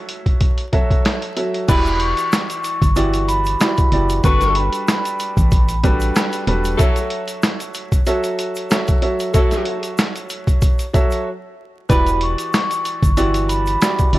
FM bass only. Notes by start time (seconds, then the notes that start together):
1.69 E1
2.82 G1
3.92 F#1
4.24 G1
5.37 A1
6.47 E1
11.90 E1
13.03 G1
14.13 F#1